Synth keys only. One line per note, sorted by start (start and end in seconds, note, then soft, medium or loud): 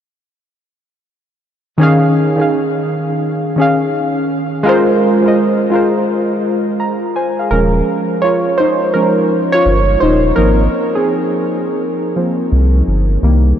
1.78 2.33 D#3 loud
1.78 2.33 C#4 medium
1.78 2.34 G#4 loud
1.83 2.35 F5 loud
2.36 3.51 D#3 medium
2.36 3.51 C#4 medium
2.36 3.52 G#4 medium
2.42 3.53 F5 medium
3.56 4.59 D#3 medium
3.56 4.60 C#4 medium
3.56 4.61 G#4 medium
3.61 4.61 F5 medium
4.63 5.18 G#3 loud
4.63 5.19 F4 loud
4.63 5.20 A#4 loud
4.69 5.21 C5 loud
5.22 5.69 G#3 medium
5.22 5.69 F4 medium
5.22 5.71 A#4 medium
5.28 5.71 D#5 medium
5.70 7.07 G#3 medium
5.70 7.08 F4 medium
5.70 6.80 A#4 medium
5.75 6.81 C5 medium
6.80 7.14 A#5 medium
7.16 7.38 C5 medium
7.16 7.38 G#5 medium
7.39 7.73 G#4 soft
7.39 7.73 F5 medium
7.51 8.55 F3 medium
7.51 8.55 G#3 soft
7.51 8.55 C#4 medium
7.51 8.24 A#4 medium
8.22 8.56 F4 medium
8.22 8.55 C#5 loud
8.57 8.92 D#4 medium
8.57 8.95 C5 loud
8.94 9.26 F3 soft
8.94 9.27 G#3 soft
8.94 9.50 C#4 medium
8.94 9.55 A#4 medium
9.52 9.98 F4 medium
9.52 9.97 C#5 loud
10.01 10.16 D#4 medium
10.01 10.15 C5 loud
10.36 10.88 F3 medium
10.36 10.88 A#3 medium
10.36 10.89 C4 medium
10.36 10.92 D#4 medium
10.36 10.97 A#4 loud
10.95 12.16 C4 medium
10.95 12.83 G#4 medium
12.16 12.48 F3 medium
12.16 12.48 A#3 soft
12.16 12.48 C4 medium
13.23 13.59 D#3 medium
13.23 13.59 G3 medium
13.23 13.59 A#3 medium